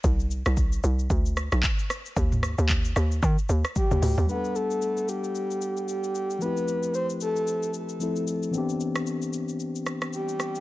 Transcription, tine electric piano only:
X:1
M:4/4
L:1/8
Q:"Swing 16ths" 1/4=113
K:G
V:1 name="Tine electric piano"
z8 | z8 | [G,A,B,DAf]8 | [=F,A,CEG]6 [F,A,CEA]2 |
[E,B,CDG]8 |]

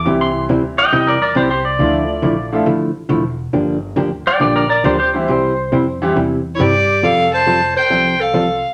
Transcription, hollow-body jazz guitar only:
X:1
M:4/4
L:1/8
Q:"Swing" 1/4=138
K:F
V:1 name="Hollow-body jazz guitar"
[C,G,CEG] z [C,G,CEG] z [C,G,CEG] z [C,G,CEG] z | [D,F,A,E] z [D,F,A,E] z [D,F,A,E] z [D,F,A,E] z | [D,F,B,DG] z [D,F,B,DG] z [D,F,B,DG] z [D,F,B,DG] z | [C,G,CEG] z [C,G,CEG] z [C,G,CEG] z [C,G,CEG] z |
[F,G,CFA] z [F,G,CFA] z [F,G,CFA] z [F,G,CFA] z |]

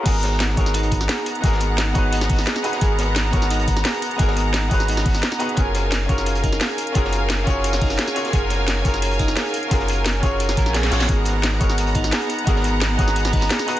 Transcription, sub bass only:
X:1
M:4/4
L:1/8
Q:1/4=174
K:F#
V:1 name="Sub bass" clef=bass
G,,,3 G,,,3 z2 | G,,,3 G,,,3 z2 | G,,,3 G,,,3 z2 | G,,,3 G,,,3 z2 |
F,,,3 F,,,3 z2 | F,,,3 F,,,3 z2 | F,,,3 F,,,3 z2 | F,,,3 F,,,2 A,,,2 A,,, |
G,,,3 G,,,3 z2 | G,,,3 G,,,3 z2 |]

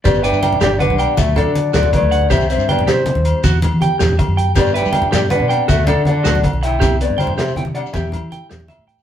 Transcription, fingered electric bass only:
X:1
M:12/8
L:1/16
Q:3/8=107
K:G
V:1 name="Fingered electric bass" clef=bass
G,,,3 G,,2 z G,,,3 B,,,2 z D,,3 D,3 D,,2 z D,,3 | C,,3 G,,3 C,3 _E,,2 z =E,,3 E,2 z E,,2 z F,,3 | G,,3 G,2 z G,,3 B,,2 z D,,3 D,3 D,,2 z B,,,3 | C,,3 G,,3 C,3 C,2 z E,,3 E,2 z E,,2 z A,,3 |]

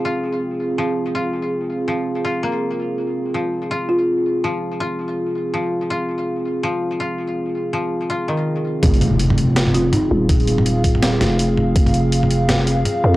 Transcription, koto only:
X:1
M:4/4
L:1/8
Q:"Swing 16ths" 1/4=164
K:Fm
V:1 name="Koto"
F4 F,2 F2- | F2 F,2 F B, z2 | z2 F,2 F4 | F,2 F4 F,2 |
F4 F,2 F2- | F2 F,2 F E, z2 | z8 | z8 |
z8 |]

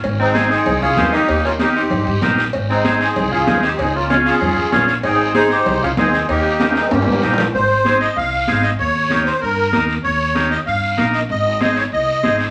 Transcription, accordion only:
X:1
M:4/4
L:1/8
Q:1/4=192
K:Ab
V:1 name="Accordion"
z E2 A2 A2 G- | G F G G3 z2 | z E2 A2 A2 G | A F F A4 z |
A2 c c2 A A2 | G3 E G3 z | c3 e f3 e | d3 c B3 z |
d3 e f2 f e | e2 e d e3 z |]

